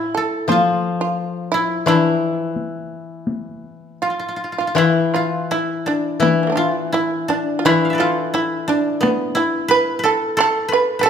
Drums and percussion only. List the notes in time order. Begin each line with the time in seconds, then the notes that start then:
0.50 taiko high
1.87 taiko rim
2.56 taiko high
3.27 taiko high
4.77 taiko rim
5.14 taiko rim
6.22 taiko high
7.66 taiko rim
9.03 taiko high
10.39 taiko rim
10.72 taiko rim